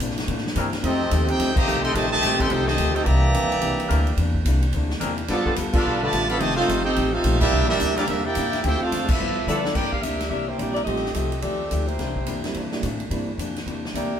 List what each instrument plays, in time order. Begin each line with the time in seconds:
0.00 upright bass A#2, hollow-body jazz guitar C3 E3 A#3 D4, hi-hat pedal, ride
0.10 snare
0.18 snare, ride
0.28 upright bass A2, hollow-body jazz guitar C3 E3 A#3 D4, ride
0.37 snare
0.47 snare
0.56 upright bass G2, hollow-body jazz guitar C3 E3 A#3 D4, saxophone section E3 C4 D4 A#4, hi-hat pedal, ride
0.73 snare, ride
0.82 upright bass F2, hollow-body jazz guitar F3 A3 D#4 G4, trombone section A3 C4 D#4, trumpet section C4 G4 A4 D#5, ride
1.11 upright bass D#2, hollow-body jazz guitar F3 A3 D#4 G4, hi-hat pedal, ride
1.26 trombone section C4 D#4 G4, trumpet section D#4 A4 C5 G5, ride
1.38 upright bass D2, hollow-body jazz guitar F3 A3 D#4 G4, snare, ride
1.54 trombone section C3 D#3 A#3, trumpet section G4 C5 D#5 A#5, kick, crash
1.66 upright bass C2, hollow-body jazz guitar F3 A3 D#4 G4, saxophone section F3 A3 D#4 G4, hi-hat pedal
1.81 trombone section D#3 A3 C4, trumpet section A4 D#5 G5 C6, ride
1.93 upright bass A1, trombone section C3 D#3 A3, hollow-body jazz guitar F3 A3, trumpet section G4 C5 D#5 A5, ride
1.97 hollow-body jazz guitar D#4 G4
2.09 trombone section C3 D#3 A3, trumpet section G4 C5 D#5 A5, snare
2.21 upright bass A#1, saxophone section F3 A3 D#4 G4, hollow-body jazz guitar F3 A3, snare, hi-hat pedal, ride
2.26 hollow-body jazz guitar D#4 G4
2.38 trombone section D#3 A3 C4, trumpet section A4 D#5 G5 C6, kick, ride
2.48 upright bass C2, hollow-body jazz guitar F3 A3, trombone section C4 D#4 G4, trumpet section D#4 A4 C5 F#5 G5, ride
2.52 hollow-body jazz guitar D#4 G4
2.64 trombone section C3 D#3 A3, trumpet section G4 C5 D#5 A5, snare
2.78 upright bass D2, hollow-body jazz guitar F3 A3 D#4 G4, hi-hat pedal, ride
2.93 trombone section C4 D#4 G4, trumpet section D#4 A4 C5 G5, ride
3.04 upright bass C2, hollow-body jazz guitar C3 E3, trombone section E3 G3 A#3, trumpet section G4 D5 E5 A#5, ride
3.08 hollow-body jazz guitar A#3 D4
3.34 upright bass A#1, hollow-body jazz guitar C3 E3 A#3 D4, hi-hat pedal, ride
3.43 upright bass G1
3.52 upright bass E1, ride
3.61 upright bass C2, hollow-body jazz guitar C3 E3 A#3 D4, ride
3.78 muted upright bass stroke, ride
3.88 upright bass D2, hollow-body jazz guitar C3 E3 A#3, saxophone section E3 C4 D4 A#4, hi-hat pedal, ride
3.92 hollow-body jazz guitar D4
4.07 ride
4.17 upright bass E2, hollow-body jazz guitar C3 E3 A#3, ride
4.21 hollow-body jazz guitar D4
4.35 kick
4.45 upright bass C2, hollow-body jazz guitar C3 E3 A#3 D4, hi-hat pedal, ride
4.62 ride
4.73 upright bass D2, hollow-body jazz guitar C3 E3 A#3, ride
4.77 hollow-body jazz guitar D4
4.90 snare
5.00 upright bass E2, hollow-body jazz guitar C3 E3 A#3 D4, saxophone section E3 C4 D4 A#4, hi-hat pedal, ride
5.18 ride
5.28 upright bass G2, trombone section F3 B3 D4, hollow-body jazz guitar G3 B3 F4 A4, trumpet section B3 F4 A4 D5, snare, ride
5.46 saxophone section G3 B3 F4 A4, muted upright bass stroke, kick
5.56 upright bass D2, hollow-body jazz guitar G3 B3 F4 A4, hi-hat pedal, ride
5.72 trombone section B3 D4 F4, trumpet section D4 A4 B4 F5, muted upright bass stroke, kick, crash
5.85 upright bass B1, hollow-body jazz guitar G3 B3 F4 A4
6.01 trombone section D3 F3 A3, trumpet section F4 B4 D5 A5
6.13 upright bass A1, hollow-body jazz guitar G3 B3 F4 A4, hi-hat pedal, ride
6.29 trombone section D3 F3 B3, trumpet section A4 D5 F5 B5, ride
6.38 upright bass F1, trombone section C3 D#3 A3, hollow-body jazz guitar F3 A3 D#4, trumpet section G4 C5 D#5 A5, ride
6.43 hollow-body jazz guitar G4
6.51 snare
6.56 saxophone section G3 D#4 F4 A4, trombone section A3 C4 F4, trumpet section D#4 A4 C5 F5, snare
6.69 upright bass G1, hollow-body jazz guitar F3 A3 D#4 G4, hi-hat pedal, ride
6.84 trombone section C4 D#4 G4, trumpet section D#4 A4 C5 G5
6.96 upright bass A1, hollow-body jazz guitar F3 A3 D#4 G4, ride
7.12 trombone section A3 C4 F4, trumpet section D#4 A4 C5 F5
7.24 upright bass A#1, hollow-body jazz guitar F3 A3 D#4 G4, hi-hat pedal, ride
7.40 trombone section G3 A#3 E4, trumpet section D4 G4 A#4 E5, kick, crash
7.51 upright bass C2, hollow-body jazz guitar C3 A#3 D4 E4
7.62 upright bass A#1
7.68 upright bass G1, trombone section G3 A#3 E4, trumpet section D4 G4 A#4 E5, snare
7.79 upright bass D2, hollow-body jazz guitar C3 A#3 D4 E4, hi-hat pedal, ride
7.96 saxophone section E3 C4 D4 A#4, trombone section G3 A#3 D4, trumpet section A#3 E4 G4 D5, snare, ride
8.07 upright bass E2, hollow-body jazz guitar C3 A#3 D4 E4, trombone section G3 A#3 E4, trumpet section D4 G4 A#4 E5, ride
8.23 trombone section A#3 E4 G4, trumpet section E4 A#4 D5 G5
8.35 upright bass G2, hollow-body jazz guitar C3 A#3 D4 E4, hi-hat pedal, ride
8.53 snare, ride
8.62 upright bass D2, hollow-body jazz guitar D3 A3, trombone section G4, ride
8.66 hollow-body jazz guitar C4 F4, trumpet section E4 A4 C5 G5
8.80 trombone section A3 C4 F4, trumpet section D4 A4 C5 F5, muted upright bass stroke
8.91 upright bass F2, hollow-body jazz guitar D3 A3 C4 F4, hi-hat pedal, ride
9.08 trombone section F3 B3 E4, trumpet section D4 A4 B4 E5, kick, crash
9.19 hollow-body jazz guitar G2 F3 B3 E4, upright bass G2
9.47 hollow-body jazz guitar G2 F3 B3 E4, upright bass D3, saxophone section F3 B3 E4 F4 A4 D5, hi-hat pedal
9.65 snare
9.75 upright bass G2, hollow-body jazz guitar C3 E3 A#3 D4, saxophone section E4 A#4 D5 G5, kick, snare, crash
9.92 saxophone section D4 G4 A#4 F5, kick
10.02 upright bass D2, hollow-body jazz guitar C3 E3 A#3 D4, saxophone section D4 G4 A#4 E5, hi-hat pedal, ride
10.20 snare, ride
10.29 upright bass C2, hollow-body jazz guitar C3 E3 A#3, saxophone section D4 G4 A#4 E5
10.34 hollow-body jazz guitar D4
10.48 saxophone section A#3 E4 G4 C5
10.58 upright bass A#1, hollow-body jazz guitar C3 E3 A#3 D4, grand piano G3 A#3 C4 D4 E4, saxophone section A#3 E4 G4 D5, hi-hat pedal, ride
10.74 saxophone section A#3 E4 G4 D5, ride
10.84 upright bass A1, hollow-body jazz guitar F3 A3 D#4, grand piano G3 A3 C4 D#4 F4, saxophone section C4 G4 A4 D#5, ride
10.89 hollow-body jazz guitar G4
10.96 snare
11.05 snare
11.13 upright bass C2, hollow-body jazz guitar F3 A3 D#4 G4, saxophone section C4 G4 A4 D#5, hi-hat pedal, ride
11.32 ride
11.41 upright bass D#2, hollow-body jazz guitar F3 A3 D#4, saxophone section C4 G4 A4 D5, ride
11.45 hollow-body jazz guitar G4
11.71 upright bass D2, hollow-body jazz guitar F3 A3 D#4 G4, hi-hat pedal, ride
11.87 saxophone section A#3 E4 G4 C5, ride
11.98 upright bass C2, hollow-body jazz guitar C3 E3 A#3 D4, snare, ride
12.16 kick
12.26 upright bass F2, hollow-body jazz guitar C3 E3 A#3 D4, hi-hat pedal, ride
12.44 grand piano G3 A#3 C4 D4 E4, snare, ride
12.54 upright bass G2, hollow-body jazz guitar C3 E3 A#3, ride
12.59 hollow-body jazz guitar D4
12.71 grand piano G3 A#3 C4 D4 E4, snare
12.83 upright bass A2, hollow-body jazz guitar C3 E3 A#3 D4, hi-hat pedal, ride
13.00 ride
13.10 upright bass G2, hollow-body jazz guitar C3 E3 A#3, grand piano G3 A#3 C4 D4 E4, ride
13.14 hollow-body jazz guitar D4
13.37 upright bass F2, hollow-body jazz guitar C3 E3 A#3 D4, hi-hat pedal, ride
13.56 snare, ride
13.66 upright bass E2, hollow-body jazz guitar C3 E3 A#3, ride
13.70 hollow-body jazz guitar D4
13.85 snare
13.94 upright bass D2, hollow-body jazz guitar C3 E3 A#3 D4, saxophone section A#3 E4 G4 D5, hi-hat pedal, ride